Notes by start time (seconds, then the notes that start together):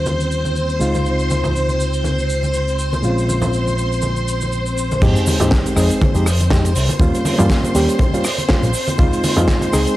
Already playing: D#2 G3 A#3 C#4 F4 C5
0.06 high conga, shaker
0.20 shaker
0.32 shaker
0.45 high conga, shaker
0.56 shaker
0.69 shaker
0.79 C#2 G#3 C4 D#4 F4, shaker
0.95 high conga, shaker
1.06 shaker
1.19 shaker
1.30 high conga, shaker
1.44 low conga, shaker
1.56 shaker
1.69 high conga, shaker
1.80 shaker
1.94 shaker
2.04 high conga, shaker
2.18 shaker
2.30 shaker
2.43 high conga, shaker
2.54 shaker
2.68 shaker
2.79 shaker
2.93 high conga, shaker
3.03 A#1 G#3 C4 C#4 F4, shaker
3.18 shaker
3.29 high conga, shaker
3.42 low conga, shaker
3.53 shaker
3.67 high conga, shaker
3.78 shaker
3.92 shaker
4.02 high conga, shaker
4.16 shaker
4.28 shaker
4.41 high conga, shaker
4.52 shaker
4.66 shaker
4.78 shaker
4.91 high conga, shaker
5.02 F2 G#3 C4 D#4 G4 C5, kick, closed hi-hat, crash, sub drop, shaker
5.16 closed hi-hat, shaker
5.27 open hi-hat, high conga, shaker
5.40 G#2 G#3 C4 D#4 G4, closed hi-hat, low conga, shaker
5.51 kick, snare, closed hi-hat, shaker
5.66 closed hi-hat, high conga, shaker
5.76 F2 G#3 C4 D#4 G#4, cross-stick, open hi-hat, shaker
5.90 closed hi-hat, shaker
6.01 kick, closed hi-hat, high conga, shaker
6.14 F2 G#3 C4 D#4 G4, closed hi-hat, shaker
6.26 cross-stick, open hi-hat, shaker
6.39 closed hi-hat, high conga, shaker
6.50 G#3 C4 D#4 G4, kick, snare, closed hi-hat, shaker
6.65 closed hi-hat, shaker
6.75 C2, open hi-hat, shaker
6.89 closed hi-hat, high conga, shaker
7.00 D#2 G3 A#3 C#4 F4, kick, closed hi-hat, shaker
7.14 closed hi-hat, shaker
7.25 open hi-hat, high conga, shaker
7.38 G2 G3 A#3 C#4 F4, closed hi-hat, low conga, shaker
7.50 kick, snare, closed hi-hat, shaker
7.63 closed hi-hat, high conga, shaker
7.75 D#2 G3 A#3 C#4 G4, open hi-hat, shaker
7.89 closed hi-hat, shaker
7.99 kick, closed hi-hat, high conga, shaker
8.13 G3 A#3 C#4 F4, closed hi-hat, shaker
8.24 cross-stick, open hi-hat, shaker
8.38 closed hi-hat, high conga, shaker
8.49 G3 A#3 C#4 F4, kick, snare, closed hi-hat, shaker
8.63 A#1, closed hi-hat, shaker
8.74 open hi-hat, shaker
8.88 closed hi-hat, high conga, shaker
8.98 C#2 G#3 C4 D#4 F4, kick, closed hi-hat, shaker
9.13 closed hi-hat, shaker
9.23 open hi-hat, high conga, shaker
9.36 F2 G#3 C4 D#4 F4, closed hi-hat, low conga, shaker
9.48 kick, snare, closed hi-hat, shaker
9.61 closed hi-hat, high conga, shaker
9.73 C#2 G#3 C4 D#4 G#4, cross-stick, open hi-hat, shaker
9.87 closed hi-hat, shaker